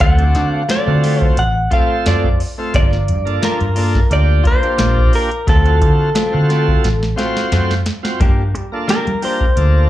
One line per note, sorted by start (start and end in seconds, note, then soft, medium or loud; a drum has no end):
0.00 0.35 D2 medium
0.00 0.22 F#3 medium
0.00 0.23 A3 medium
0.00 0.23 C4 medium
0.00 0.23 F4 medium
0.00 0.51 F#5 loud
0.00 kick loud
0.00 closed hi-hat medium
0.18 0.63 A3 medium
0.18 0.63 C4 medium
0.18 0.63 D4 medium
0.18 0.64 F#4 medium
0.18 closed hi-hat soft
0.35 0.64 D3 medium
0.35 snare soft
0.35 closed hi-hat medium
0.51 0.70 F5 loud
0.69 0.91 F#3 medium
0.69 0.91 A3 medium
0.69 0.91 C4 medium
0.69 0.92 F4 medium
0.69 1.23 D5 medium
0.69 snare loud
0.69 closed hi-hat medium
0.87 1.30 D3 medium
0.87 1.42 A3 medium
0.87 1.43 C4 medium
0.87 1.43 F4 medium
0.87 1.43 F#4 medium
1.03 1.26 A3 soft
1.03 1.26 C4 soft
1.03 1.25 F4 soft
1.03 snare soft
1.03 open hi-hat medium
1.22 1.39 C5 medium
1.22 kick medium
1.37 1.67 A1 medium
1.37 1.73 F#5 medium
1.37 closed hi-hat medium
1.70 2.28 A3 medium
1.70 1.94 A3 soft
1.70 2.28 C4 medium
1.70 1.94 C4 soft
1.70 1.93 F4 medium
1.70 2.29 F4 medium
1.70 2.29 A4 medium
1.70 2.07 F5 medium
1.70 kick medium
1.70 closed hi-hat medium
2.06 2.35 F#2 medium
2.06 2.27 F#3 medium
2.06 2.28 A3 medium
2.06 2.28 C4 medium
2.06 2.29 F4 medium
2.06 2.39 D5 medium
2.06 snare medium
2.06 closed hi-hat medium
2.24 kick medium
2.40 open hi-hat medium
2.58 2.74 A3 medium
2.58 2.74 C4 medium
2.58 2.75 F4 medium
2.58 2.75 A4 medium
2.74 3.11 G1 loud
2.74 2.96 F3 medium
2.74 2.96 A#3 medium
2.74 2.96 D4 medium
2.74 2.97 F4 medium
2.74 3.44 D5 loud
2.74 kick loud
2.74 closed hi-hat medium
2.93 snare soft
3.08 3.38 G2 medium
3.08 closed hi-hat medium
3.25 3.60 A#3 medium
3.25 3.60 D4 medium
3.25 3.60 F4 medium
3.25 3.60 A4 medium
3.25 closed hi-hat soft
3.42 3.64 F3 medium
3.42 3.64 A#3 medium
3.42 3.65 D4 medium
3.42 3.65 F4 medium
3.42 4.13 A#4 medium
3.42 snare medium
3.42 closed hi-hat medium
3.61 4.04 G2 medium
3.61 closed hi-hat soft
3.76 4.00 A#3 medium
3.76 3.99 A#3 soft
3.76 4.00 D4 medium
3.76 3.99 D4 soft
3.76 3.98 F4 soft
3.76 4.00 F4 medium
3.76 4.00 A4 medium
3.76 open hi-hat medium
3.95 kick medium
3.95 snare soft
4.10 4.40 D2 medium
4.10 4.44 A#3 medium
4.10 4.44 D4 medium
4.10 4.45 F4 medium
4.10 4.45 G4 medium
4.10 4.47 D5 medium
4.10 closed hi-hat medium
4.44 4.67 A#3 soft
4.44 4.67 D4 soft
4.44 4.66 F4 medium
4.44 5.15 C5 medium
4.44 kick medium
4.44 closed hi-hat medium
4.62 5.30 A#3 medium
4.62 5.30 D4 medium
4.62 5.31 F4 medium
4.62 5.31 G4 medium
4.62 closed hi-hat soft
4.78 5.08 A#1 medium
4.78 5.00 F3 medium
4.78 5.00 A#3 medium
4.78 5.01 D4 medium
4.78 5.01 F4 medium
4.78 snare loud
4.78 closed hi-hat medium
4.97 kick medium
5.13 5.49 A#4 medium
5.13 open hi-hat medium
5.31 closed hi-hat soft
5.47 5.81 D2 medium
5.47 5.69 F#3 medium
5.47 5.69 A3 medium
5.47 5.69 C4 medium
5.47 5.70 F4 medium
5.47 7.49 A4 medium
5.47 kick loud
5.47 closed hi-hat medium
5.65 6.09 C4 medium
5.65 6.09 F4 medium
5.65 6.10 F#4 medium
5.65 6.10 A4 medium
5.65 closed hi-hat soft
5.81 6.11 D3 medium
5.81 kick medium
5.81 closed hi-hat medium
6.15 6.37 F#3 medium
6.15 6.37 A3 medium
6.15 6.37 C4 medium
6.15 6.38 F4 medium
6.15 snare loud
6.15 closed hi-hat medium
6.32 6.77 D3 medium
6.32 6.88 C4 medium
6.32 6.88 F4 medium
6.32 6.89 F#4 medium
6.32 6.89 A4 medium
6.49 6.72 A3 soft
6.49 6.72 C4 medium
6.49 6.71 F4 medium
6.49 snare soft
6.49 closed hi-hat medium
6.68 kick medium
6.84 7.13 A1 medium
6.84 snare medium
6.84 closed hi-hat medium
7.03 snare medium
7.16 7.74 C4 medium
7.16 7.40 C4 soft
7.16 7.74 F4 medium
7.16 7.39 F4 medium
7.16 7.74 F#4 medium
7.16 7.75 C5 loud
7.16 snare medium
7.16 closed hi-hat medium
7.21 7.41 A3 soft
7.37 snare medium
7.52 7.81 F#2 medium
7.52 7.73 F#3 medium
7.52 7.74 A3 medium
7.52 7.74 C4 medium
7.52 7.74 F4 medium
7.52 snare medium
7.52 closed hi-hat medium
7.71 snare medium
7.86 snare medium
7.86 closed hi-hat medium
8.03 8.20 C4 medium
8.03 8.20 F4 medium
8.03 8.20 F#4 medium
8.03 8.20 C5 medium
8.03 snare medium
8.20 8.55 G2 medium
8.20 8.42 F3 medium
8.20 8.42 A#3 medium
8.20 8.42 D4 medium
8.20 8.43 G4 medium
8.20 kick loud
8.20 closed hi-hat medium
8.55 8.84 G3 medium
8.55 closed hi-hat medium
8.72 9.06 A#3 medium
8.72 9.06 D4 medium
8.72 9.06 F4 medium
8.72 9.07 A4 medium
8.88 9.10 F3 medium
8.88 9.10 A#3 medium
8.88 9.10 D4 medium
8.88 9.11 G4 medium
8.88 9.23 A#4 medium
8.88 snare loud
8.88 closed hi-hat medium
9.07 9.50 G3 medium
9.07 closed hi-hat soft
9.22 9.45 A#3 medium
9.22 9.45 D4 medium
9.22 9.45 D4 soft
9.22 9.46 F4 medium
9.22 9.44 G4 soft
9.22 9.46 A#4 medium
9.22 9.90 C5 medium
9.22 open hi-hat medium
9.26 9.46 A#3 soft
9.41 kick medium
9.56 9.86 D2 medium
9.56 9.90 A#3 medium
9.56 9.90 D4 medium
9.56 9.90 F4 medium
9.56 9.90 A4 medium
9.56 closed hi-hat medium